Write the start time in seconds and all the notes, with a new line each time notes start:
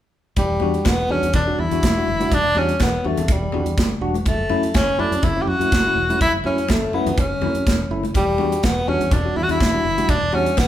0.36 E1 E3 G3, kick, closed hi-hat, muted conga
0.50 E1
0.60 E2 G3 D4 F#4, muted conga
0.74 D4 F#4, closed hi-hat
0.85 E1 B3, kick, snare, closed hi-hat, high conga
1.09 E2 G3 C#4 D4 F#4
1.22 E2, closed hi-hat
1.33 E1 D4, kick, closed hi-hat, muted conga, low conga
1.47 G3 D4 F#4
1.59 E2 E3 E4
1.71 E2 G3 D4 F#4, closed hi-hat
1.83 E1, kick, snare, closed hi-hat, high conga
1.97 G3 D4 F#4
2.08 F#1 E3
2.20 G3 D4 F#4, closed hi-hat, high conga
2.32 E1 E3 D4, kick, closed hi-hat, muted conga
2.45 E1
2.55 E2 G3 C#4 D4 F#4, muted conga
2.69 D4 F#4, closed hi-hat
2.80 E1 B3, kick, snare, closed hi-hat, high conga
3.04 E2 G3 A3 D4 F#4, muted conga
3.17 E2, closed hi-hat, low conga
3.28 E1 G3 D4 F#4, kick, closed hi-hat, muted conga
3.42 E3
3.52 E2 G3 D4 F#4, low conga
3.66 E2, closed hi-hat
3.78 F#1, kick, snare, closed hi-hat, high conga
4.01 E1 G3 D4 F#4
4.14 closed hi-hat, high conga
4.26 F#1 F#3 A3, kick, closed hi-hat, muted conga
4.39 F#1
4.49 F#2 A3 C#4 E4, muted conga
4.63 C#4 E4, closed hi-hat
4.74 F#1 C#4, kick, snare, closed hi-hat, high conga
4.98 F#2 A3 C#4 D4 E4, muted conga
5.12 F#2, closed hi-hat
5.23 F#1 E4, kick, closed hi-hat, muted conga, low conga
5.36 A3 C#4 E4
5.42 G4
5.47 F#2 F#3 F#4
5.59 F#2 A3 C#4 E4, closed hi-hat
5.72 F#1, kick, snare, closed hi-hat, high conga
5.86 A3 C#4 E4
5.95 E1 F#3
6.09 A3 C#4 E4, closed hi-hat, high conga
6.21 F#1 F#3 E4, kick, closed hi-hat, muted conga
6.33 F#1
6.44 F#2 A3 C#4 E4, muted conga
6.58 C#4 E4, closed hi-hat
6.68 F#1 A3, kick, snare, closed hi-hat, high conga
6.93 F#2 A3 B3 C#4 E4, muted conga
7.06 F#2, closed hi-hat, low conga
7.18 F#1 C#4 E4, kick, closed hi-hat, muted conga
7.30 F#3
7.41 F#2 A3 C#4 E4, low conga
7.55 F#2, closed hi-hat
7.67 E1, kick, snare, closed hi-hat, high conga
7.91 F#1 A3 C#4 E4
8.03 closed hi-hat, high conga
8.14 E1 E3 G3, kick, closed hi-hat, muted conga
8.27 E1
8.38 E2 G3 D4 F#4, muted conga
8.52 D4 F#4, closed hi-hat
8.63 E1 B3, kick, snare, closed hi-hat, high conga
8.88 E2 G3 C#4 D4 F#4, muted conga
9.01 E2, closed hi-hat
9.11 E1 D4, kick, closed hi-hat, muted conga, low conga
9.25 G3 D4 F#4
9.36 E2 E3 E4
9.44 F#4
9.48 E2 G3 D4 E4 F#4, closed hi-hat
9.61 E1, kick, snare, closed hi-hat, high conga
9.74 G3 D4 F#4
9.85 F#1 E3
9.98 G3 D4 F#4, closed hi-hat, high conga
10.09 E1 E3 D4, kick, closed hi-hat, muted conga
10.21 E1
10.32 E2 G3 C#4 D4 F#4, muted conga
10.46 D4 F#4, closed hi-hat
10.57 E1 B3, kick, snare, closed hi-hat, high conga